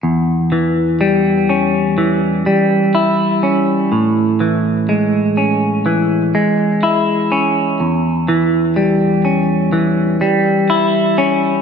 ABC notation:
X:1
M:4/4
L:1/8
Q:1/4=62
K:E
V:1 name="Clean electric guitar" clef=bass
E,, E, =G, C E, G, E C | A,, E, G, C E, G, E C | E,, E, =G, C E, G, E C |]